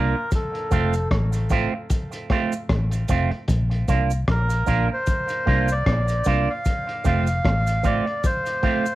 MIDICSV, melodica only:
0, 0, Header, 1, 2, 480
1, 0, Start_track
1, 0, Tempo, 791452
1, 195, Time_signature, 4, 2, 24, 8
1, 5428, End_track
2, 0, Start_track
2, 0, Title_t, "Melodica"
2, 0, Program_c, 0, 22
2, 0, Note_on_c, 0, 70, 83
2, 186, Note_off_c, 0, 70, 0
2, 212, Note_on_c, 0, 69, 74
2, 659, Note_off_c, 0, 69, 0
2, 2611, Note_on_c, 0, 70, 83
2, 2956, Note_off_c, 0, 70, 0
2, 2991, Note_on_c, 0, 72, 87
2, 3468, Note_on_c, 0, 74, 95
2, 3476, Note_off_c, 0, 72, 0
2, 3942, Note_on_c, 0, 77, 93
2, 3955, Note_off_c, 0, 74, 0
2, 4284, Note_off_c, 0, 77, 0
2, 4293, Note_on_c, 0, 77, 104
2, 4768, Note_on_c, 0, 74, 90
2, 4778, Note_off_c, 0, 77, 0
2, 5007, Note_on_c, 0, 72, 96
2, 5008, Note_off_c, 0, 74, 0
2, 5428, Note_off_c, 0, 72, 0
2, 5428, End_track
0, 0, End_of_file